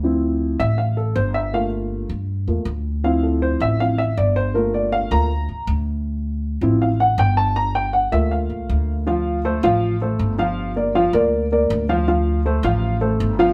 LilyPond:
<<
  \new Staff \with { instrumentName = "Grand piano" } { \time 4/4 \key d \minor \tempo 4 = 159 r4. e''8 f''8 a'8 c''8 e''8 | f''8 r2. r8 | f''8 a'8 c''8 e''8 f''8 e''8 d''8 c''8 | bes'8 d''8 f''8 bes''4. r4 |
r2 f''8 fis''8 g''8 a''8 | bes''8 g''8 fis''8 e''8 f''4.~ f''16 r16 | <f f' f''>4 <a a' c''>8 <f f' f''>4 <a a' c''>4 <f f' f''>8~ | <f f' f''>8 <bes bes' d''>8 <f f' f''>8 <bes bes' d''>4 <bes bes' d''>4 <f f' f''>8 |
<f f' f''>4 <a a' c''>8 <f f' f''>4 <a a' c''>4 <f f' f''>8 | }
  \new Staff \with { instrumentName = "Grand piano" } { \time 4/4 \key d \minor <f c' e'>4. r2 r8 | <a bes f'>4. r4 <a bes f'>8 r4 | <f c' e'>2 <f c' e'>8 r4. | <a bes f'>4. <a bes f'>8 r2 |
r4. <f c' e'>8 r2 | r4. <a bes f'>2~ <a bes f'>8 | r1 | r1 |
r1 | }
  \new Staff \with { instrumentName = "Upright bass" } { \clef bass \time 4/4 \key d \minor d,4. a,,4. g,,4~ | g,,4. g,4 e,8 d,4~ | d,4. a,,4. g,,4~ | g,,4. d,4 c,8 d,4~ |
d,4. a,,4. g,,4~ | g,,4. d,4 c,8 d,4~ | d,4. a,,4. g,,4~ | g,,4. d,4. d,4~ |
d,4. a,,4. g,,4 | }
>>